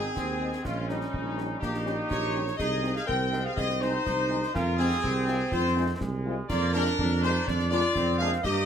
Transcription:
Already playing: woodwind section C4, trombone section D#4, trumpet section G#4, flute section G#4
0.15 tuba D#2, trombone section C4, concert bass drum, snare
0.41 french horn section G#3 C4 D#4
0.53 snare
0.63 tuba A#1, woodwind section G#3, trombone section C#4, trumpet section F4, flute section F4, concert bass drum, snare, crash
0.86 woodwind section G3, french horn section G3 C#4 D#4, trumpet section D#4, flute section D#4, snare
1.01 snare
1.14 tuba A#1, concert bass drum
1.37 french horn section G3 C#4 D#4, snare
1.59 tuba A#1, woodwind section A#3, trombone section D#4, trumpet section G4, flute section G4, concert bass drum, snare
1.74 snare
1.85 french horn section G3 C#4 D#4, snare
2.09 tuba A#1, woodwind section G4, trumpet section C#5, flute section C#5, concert bass drum, snare
2.34 french horn section G3 C#4 D#4
2.47 snare
2.57 tuba C2, trombone section D#4, woodwind section G#4, trumpet section D#5, flute section D#5, concert bass drum, snare, crash
2.83 french horn section G#3 C4 D#4, snare
2.94 woodwind section G#4, trumpet section F5, flute section F5, snare
3.06 tuba C2, trombone section C4, woodwind section A#4, trumpet section G5, flute section G5, concert bass drum
3.32 french horn section G#3 C4 D#4, snare
3.44 woodwind section G#4, trumpet section F5, flute section F5
3.56 tuba C2, woodwind section G#4, trumpet section D#5, flute section D#5, concert bass drum, snare
3.69 snare
3.80 french horn section G#3 C4 D#4, woodwind section D#4, trumpet section C5, flute section C5, snare
4.05 tuba C2, trombone section D#4, concert bass drum, snare
4.30 french horn section G#3 C4 D#4
4.43 snare
4.53 tuba F2, woodwind section C#4, trombone section F4, trumpet section A#4, flute section A#4, concert bass drum, snare, crash
4.77 french horn section G#3 C4 F4, woodwind section C4, trumpet section G#4, flute section G#4, snare
4.91 snare
5.03 tuba C2, trombone section C4, concert bass drum
5.27 french horn section G#3 C4 F4, snare
5.51 tuba F2, woodwind section F4, trumpet section C5, flute section C5, concert bass drum, snare
5.76 french horn section G#3 C4 F4
6.01 tuba C2, trombone section G#3, concert bass drum, snare
6.26 french horn section G#3 C4 F4
6.48 tuba F2, trombone section A#3, woodwind section F4, trumpet section D5, flute section D5, concert bass drum, snare, crash
6.72 french horn section G#3 A#3 D4, woodwind section D4, trumpet section A#4, flute section A#4, snare
6.87 snare
6.99 tuba F2, trombone section D4, concert bass drum
7.22 french horn section G#3 A#3 D4, woodwind section D#4, trumpet section C5, flute section C5, snare
7.46 tuba F2, woodwind section F4, trumpet section D5, flute section D5, concert bass drum, snare
7.59 snare
7.70 french horn section G#3 A#3 D4, woodwind section F4, trumpet section D5, flute section D5, snare
7.95 tuba F2, trombone section C4, concert bass drum, snare
8.17 french horn section G#3 A#3 D4, woodwind section G#4, trumpet section F5, flute section F5
8.32 snare
8.42 tuba G2, trombone section A#3, woodwind section G4, trumpet section D#5, flute section D#5, concert bass drum, snare, crash

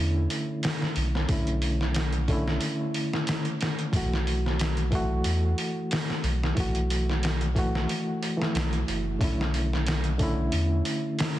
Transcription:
Already playing: sub bass E2, reed electric piano D3 A3 C#4 E4
0.30 open hi-hat
0.63 snare, open hi-hat
0.82 snare
0.96 sub bass B1, open hi-hat
1.15 snare
1.28 sub bass B1, reed electric piano D3 A3 C#4, kick, open hi-hat
1.32 reed electric piano E4
1.47 closed hi-hat
1.62 open hi-hat
1.81 snare
1.94 snare, open hi-hat
2.13 closed hi-hat
2.28 reed electric piano D3 A3 C#4, kick, open hi-hat
2.32 reed electric piano E4
2.48 snare
2.61 open hi-hat
2.94 open hi-hat
3.13 snare
3.27 snare, open hi-hat
3.45 closed hi-hat
3.61 snare, open hi-hat
3.79 closed hi-hat
3.92 sub bass B1, reed electric piano E3 A3, kick, open hi-hat
3.96 reed electric piano F#4
4.13 snare
4.27 open hi-hat
4.46 snare
4.59 snare, open hi-hat
4.77 closed hi-hat
4.91 reed electric piano E3 A3, kick, open hi-hat
4.95 reed electric piano F#4
5.24 sub bass E2, open hi-hat
5.58 open hi-hat
5.91 snare, open hi-hat
6.10 snare
6.23 sub bass B1, open hi-hat
6.43 snare
6.55 sub bass B1, reed electric piano E3 A3, kick, open hi-hat
6.60 reed electric piano F#4
6.75 closed hi-hat
6.90 open hi-hat
7.10 snare
7.23 snare, open hi-hat
7.41 closed hi-hat
7.55 reed electric piano E3 A3 F#4, kick, open hi-hat
7.75 snare
7.89 open hi-hat
8.23 open hi-hat
8.37 reed electric piano E3 A3
8.42 reed electric piano E4, snare
8.55 sub bass B1, snare, open hi-hat
8.73 closed hi-hat
8.88 sub bass F#1, open hi-hat
9.19 sub bass B1, reed electric piano D3 A3 C#4, kick, open hi-hat
9.24 reed electric piano E4
9.41 snare
9.54 open hi-hat
9.73 snare
9.87 snare, open hi-hat
10.04 closed hi-hat
10.18 reed electric piano D3 A3 C#4, kick, open hi-hat
10.23 reed electric piano E4
10.52 sub bass E2, open hi-hat
10.85 open hi-hat
11.19 snare, open hi-hat

